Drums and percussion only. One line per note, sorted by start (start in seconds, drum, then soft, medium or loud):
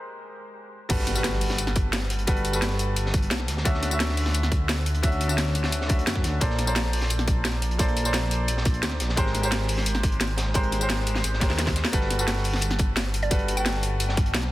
0.90 kick loud
0.90 closed hi-hat loud
0.90 closed hi-hat medium
0.90 tambourine soft
0.90 crash loud
0.99 snare soft
1.07 snare soft
1.07 closed hi-hat medium
1.07 tambourine soft
1.15 tambourine medium
1.24 snare loud
1.24 closed hi-hat loud
1.24 closed hi-hat medium
1.24 tambourine soft
1.33 snare soft
1.41 closed hi-hat medium
1.41 open hi-hat medium
1.41 tambourine soft
1.50 snare soft
1.58 closed hi-hat medium
1.58 tambourine soft
1.67 snare medium
1.67 closed hi-hat soft
1.76 kick loud
1.76 closed hi-hat medium
1.76 tambourine soft
1.93 snare loud
1.93 closed hi-hat loud
1.93 closed hi-hat medium
1.93 tambourine medium
2.10 closed hi-hat medium
2.19 closed hi-hat soft
2.27 kick loud
2.27 closed hi-hat medium
2.27 tambourine soft
2.37 closed hi-hat soft
2.45 closed hi-hat medium
2.45 tambourine soft
2.53 tambourine medium
2.62 snare loud
2.62 closed hi-hat medium
2.62 closed hi-hat loud
2.62 tambourine soft
2.71 snare soft
2.79 closed hi-hat medium
2.79 tambourine soft
2.96 closed hi-hat medium
2.96 tambourine soft
3.06 snare medium
3.14 kick loud
3.14 closed hi-hat medium
3.14 tambourine soft
3.22 closed hi-hat soft
3.30 snare loud
3.30 closed hi-hat medium
3.30 tambourine soft
3.40 snare soft
3.48 snare soft
3.48 closed hi-hat medium
3.57 snare medium
3.65 kick loud
3.65 closed hi-hat medium
3.65 tambourine soft
3.74 snare soft
3.83 snare soft
3.83 closed hi-hat medium
3.83 tambourine soft
3.91 tambourine medium
4.00 snare loud
4.00 closed hi-hat medium
4.00 tambourine soft
4.09 snare medium
4.17 closed hi-hat medium
4.17 open hi-hat medium
4.17 tambourine soft
4.26 snare soft
4.34 closed hi-hat medium
4.34 tambourine soft
4.43 snare medium
4.43 closed hi-hat soft
4.52 kick loud
4.52 closed hi-hat medium
4.52 tambourine soft
4.69 snare loud
4.69 closed hi-hat medium
4.69 tambourine soft
4.86 closed hi-hat medium
4.95 closed hi-hat soft
5.03 kick loud
5.03 closed hi-hat medium
5.03 tambourine soft
5.12 closed hi-hat soft
5.21 closed hi-hat medium
5.21 tambourine soft
5.29 tambourine medium
5.38 snare loud
5.38 closed hi-hat medium
5.38 tambourine soft
5.47 snare soft
5.55 closed hi-hat medium
5.55 tambourine soft
5.64 snare soft
5.72 closed hi-hat medium
5.72 tambourine soft
5.81 snare medium
5.89 kick loud
5.89 closed hi-hat medium
5.89 tambourine soft
5.99 closed hi-hat soft
6.07 snare loud
6.07 closed hi-hat medium
6.07 tambourine soft
6.16 kick medium
6.16 snare soft
6.24 snare soft
6.24 closed hi-hat medium
6.24 tambourine soft
6.41 kick loud
6.41 closed hi-hat medium
6.41 tambourine medium
6.50 snare soft
6.58 snare soft
6.58 closed hi-hat medium
6.58 tambourine soft
6.67 tambourine medium
6.75 snare loud
6.75 closed hi-hat loud
6.75 closed hi-hat medium
6.75 tambourine soft
6.85 snare soft
6.93 closed hi-hat medium
6.93 open hi-hat medium
6.93 tambourine soft
7.02 snare soft
7.10 closed hi-hat medium
7.10 tambourine soft
7.19 snare medium
7.19 closed hi-hat soft
7.28 kick loud
7.28 closed hi-hat medium
7.28 tambourine soft
7.45 snare loud
7.45 closed hi-hat medium
7.45 tambourine medium
7.62 closed hi-hat medium
7.71 closed hi-hat soft
7.79 kick loud
7.79 closed hi-hat medium
7.79 tambourine medium
7.88 closed hi-hat soft
7.97 closed hi-hat medium
7.97 tambourine soft
8.05 tambourine medium
8.13 snare loud
8.13 closed hi-hat medium
8.13 tambourine medium
8.22 snare soft
8.31 closed hi-hat medium
8.31 tambourine soft
8.48 closed hi-hat medium
8.48 tambourine medium
8.57 snare medium
8.65 kick loud
8.65 closed hi-hat medium
8.65 tambourine soft
8.74 closed hi-hat soft
8.83 snare loud
8.83 closed hi-hat medium
8.83 tambourine medium
8.91 snare soft
9.00 snare soft
9.00 closed hi-hat medium
9.09 snare soft
9.17 kick loud
9.17 closed hi-hat medium
9.17 tambourine medium
9.26 snare soft
9.35 snare soft
9.35 closed hi-hat medium
9.35 tambourine soft
9.43 tambourine medium
9.52 snare loud
9.52 closed hi-hat loud
9.52 closed hi-hat medium
9.52 tambourine medium
9.60 snare soft
9.68 closed hi-hat medium
9.68 open hi-hat medium
9.68 tambourine soft
9.77 snare soft
9.86 closed hi-hat medium
9.86 tambourine soft
9.95 snare medium
9.95 closed hi-hat soft
10.03 kick loud
10.03 closed hi-hat medium
10.03 tambourine soft
10.12 closed hi-hat soft
10.20 snare loud
10.20 closed hi-hat medium
10.20 closed hi-hat loud
10.20 tambourine medium
10.37 snare loud
10.37 closed hi-hat medium
10.54 kick loud
10.54 closed hi-hat medium
10.54 closed hi-hat loud
10.54 tambourine medium
10.63 closed hi-hat soft
10.72 snare soft
10.72 closed hi-hat medium
10.72 tambourine soft
10.81 tambourine medium
10.89 snare loud
10.89 closed hi-hat medium
10.89 closed hi-hat loud
10.89 tambourine medium
10.99 snare soft
11.07 closed hi-hat medium
11.07 tambourine soft
11.15 snare soft
11.24 closed hi-hat medium
11.24 tambourine medium
11.33 snare soft
11.41 kick loud
11.41 snare medium
11.41 closed hi-hat medium
11.41 tambourine soft
11.50 snare medium
11.50 snare soft
11.59 snare medium
11.59 closed hi-hat loud
11.59 closed hi-hat medium
11.59 tambourine medium
11.67 kick medium
11.67 snare medium
11.67 closed hi-hat medium
11.76 snare soft
11.76 closed hi-hat medium
11.76 tambourine soft
11.84 snare medium
11.84 closed hi-hat medium
11.93 kick loud
11.93 closed hi-hat medium
11.93 closed hi-hat loud
11.93 tambourine soft
12.01 snare soft
12.10 snare soft
12.10 closed hi-hat medium
12.10 tambourine soft
12.19 tambourine medium
12.27 snare loud
12.27 closed hi-hat loud
12.27 tambourine soft
12.37 snare soft
12.44 open hi-hat medium
12.44 tambourine soft
12.53 snare soft
12.61 closed hi-hat medium
12.61 closed hi-hat loud
12.61 tambourine soft
12.70 snare medium
12.70 closed hi-hat soft
12.79 kick loud
12.79 closed hi-hat medium
12.79 tambourine soft
12.96 snare loud
12.96 closed hi-hat medium
12.96 closed hi-hat loud
12.96 tambourine soft
13.14 closed hi-hat medium
13.14 open hi-hat medium
13.22 closed hi-hat soft
13.31 kick loud
13.31 closed hi-hat medium
13.31 closed hi-hat loud
13.31 tambourine soft
13.39 closed hi-hat soft
13.48 closed hi-hat medium
13.48 tambourine soft
13.57 tambourine medium
13.66 snare loud
13.66 closed hi-hat medium
13.66 tambourine soft
13.74 snare soft
13.83 closed hi-hat medium
13.83 open hi-hat medium
13.83 tambourine soft
14.00 closed hi-hat medium
14.00 tambourine soft
14.09 snare medium
14.17 kick loud
14.17 closed hi-hat medium
14.17 tambourine soft
14.26 closed hi-hat soft
14.34 snare loud
14.34 closed hi-hat medium
14.34 tambourine soft
14.43 snare soft